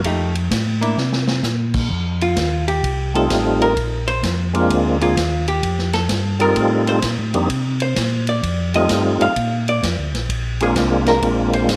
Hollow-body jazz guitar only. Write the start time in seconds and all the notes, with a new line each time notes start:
0.05 F3 A3 D#4 G4
0.81 A#3 D4 E4
2.22 F4
2.68 G4
3.16 A4
3.62 A#4
4.08 C5
5.02 F4
5.48 G4
5.94 A4
6.41 A#4
6.89 C5
7.82 C5
8.29 D5
8.76 D#5
9.22 F5
9.69 D5
10.63 G#4
11.08 A#4
11.54 C5